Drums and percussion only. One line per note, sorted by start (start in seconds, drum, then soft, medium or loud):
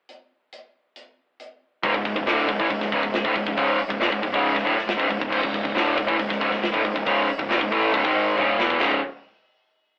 0.09 closed hi-hat medium
0.53 closed hi-hat medium
0.96 closed hi-hat medium
1.40 closed hi-hat medium
1.83 kick loud
1.83 open hi-hat medium
1.94 kick medium
2.05 kick medium
2.05 open hi-hat medium
2.16 kick medium
2.27 snare loud
2.27 open hi-hat medium
2.49 kick loud
2.49 open hi-hat medium
2.60 kick medium
2.70 kick medium
2.70 open hi-hat medium
2.81 kick medium
2.81 snare soft
2.92 kick medium
2.92 open hi-hat medium
3.03 kick medium
3.14 snare loud
3.14 open hi-hat medium
3.25 kick loud
3.35 kick medium
3.35 open hi-hat medium
3.47 kick medium
3.57 kick medium
3.57 open hi-hat medium
3.79 open hi-hat medium
3.90 kick loud
4.01 snare loud
4.01 open hi-hat medium
4.12 kick loud
4.23 kick medium
4.23 open hi-hat medium
4.34 kick medium
4.46 open hi-hat medium
4.56 kick medium
4.56 snare soft
4.67 kick medium
4.67 open hi-hat medium
4.79 snare soft
4.89 snare loud
4.89 open hi-hat medium
5.00 kick loud
5.11 kick medium
5.11 open hi-hat medium
5.21 kick loud
5.32 kick medium
5.32 crash loud
5.43 kick medium
5.54 kick medium
5.54 open hi-hat medium
5.65 kick medium
5.77 snare loud
5.77 open hi-hat medium
5.98 kick loud
5.98 open hi-hat medium
6.08 kick medium
6.19 kick medium
6.19 open hi-hat medium
6.30 kick medium
6.30 snare soft
6.41 kick medium
6.41 open hi-hat medium
6.52 kick medium
6.52 snare soft
6.63 snare loud
6.63 open hi-hat medium
6.74 kick medium
6.85 kick medium
6.85 open hi-hat medium
6.96 kick medium
7.07 kick loud
7.07 open hi-hat medium
7.28 open hi-hat medium
7.39 kick medium
7.50 snare loud
7.50 open hi-hat medium
7.61 kick loud
7.72 kick medium
7.72 open hi-hat medium
7.94 kick loud
7.94 open hi-hat medium
8.05 kick loud
8.16 open hi-hat medium
8.38 high tom medium
8.60 snare loud
8.70 kick loud
8.81 kick loud
8.81 snare medium
8.81 crash medium